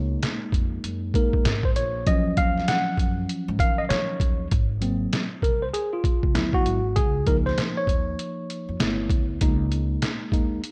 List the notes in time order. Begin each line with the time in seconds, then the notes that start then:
Already playing: C#2 G#3 A#3 D#4 C#5
0.23 snare, closed hi-hat
0.52 F2, kick, closed hi-hat
0.84 F#2, closed hi-hat
1.14 G#3 A#3 D#4 A#4, kick, closed hi-hat
1.33 kick
1.45 G#2, snare, closed hi-hat
1.63 C5, kick
1.76 A#1 C#5, closed hi-hat
2.06 D#2 F3 F#3 C#4 D#5, kick, closed hi-hat
2.37 F5, kick, closed hi-hat
2.58 snare
2.68 F#5, snare, closed hi-hat
2.97 F#2, kick, closed hi-hat
3.29 closed hi-hat
3.48 G#2
3.59 D#3 F5, kick, closed hi-hat
3.78 D#5
3.89 D#3 C#5, snare, closed hi-hat
4.20 D#2, kick, closed hi-hat
4.51 G#1, kick, closed hi-hat
4.81 F#3 A#3 C4, closed hi-hat
5.13 snare, closed hi-hat
5.42 C2 A#4, kick, closed hi-hat
5.62 C5
5.74 G#4, closed hi-hat
5.93 F4
6.04 kick, closed hi-hat
6.23 C#2, kick
6.34 D2 F#3 B3 E4, snare, closed hi-hat
6.53 F#4, kick
6.66 G#1, closed hi-hat
6.96 C#2 G#4, kick, closed hi-hat
7.26 F3 A#3 D#4 A#4, kick, closed hi-hat
7.46 C5, snare
7.58 snare, closed hi-hat
7.77 C#5
7.87 D#2, kick, closed hi-hat
8.19 closed hi-hat
8.50 closed hi-hat
8.69 F2
8.80 G1 A3 B3 E4, snare, closed hi-hat
9.09 D2, kick, closed hi-hat
9.41 C#2 G#3 A#3 D#4, kick, closed hi-hat
9.72 closed hi-hat
10.02 snare, closed hi-hat
10.32 D#2 G#3 A#3 D#4, kick, closed hi-hat
10.64 closed hi-hat